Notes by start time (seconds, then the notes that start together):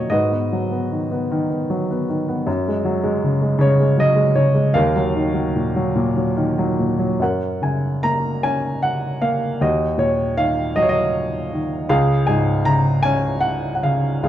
Already playing: A#2 D#3 F#3 C#5 D#5
0.10 G#2 F#4 B4 D#5
0.32 B3
0.53 F#3
0.72 B3
0.92 D#3
1.11 B3
1.31 D#3
1.50 B3
1.70 F#3
1.91 B3
2.09 D#3
2.29 B3
2.47 F#2
2.68 G#3
2.85 F#3
3.04 G#3
3.24 C#3
3.42 G#3
3.59 C#3 C#5
3.80 G#3
3.98 F#3 D#5
4.16 G#3
4.35 C#3 C#5
4.54 G#3
4.74 D#2 A#4 F5
4.96 F#3
5.16 D#3
5.34 F#3
5.56 A#2
5.76 F#3
5.96 A#2
6.17 F#3
6.37 D#3
6.58 F#3
6.79 A#2
6.99 F#3
7.20 F#2 A#4 F#5
7.62 C#3 G#5
8.03 A#3 A#5
8.43 C#4 G#5
8.83 F#5
9.22 A#3 F5
9.61 D#2 F#4 D#5
9.98 A#2 C#5
10.37 D#3 F5
10.76 F#3 D#5
10.82 C#5
10.89 D#5
11.53 D#3
11.89 C#2 G#4 F5
12.27 G#2 G#5
12.65 C#3 A#5
13.03 C#4 G#5
13.41 F#5
13.75 F#5
13.83 C#3 F5
14.23 C#2 G#4 F5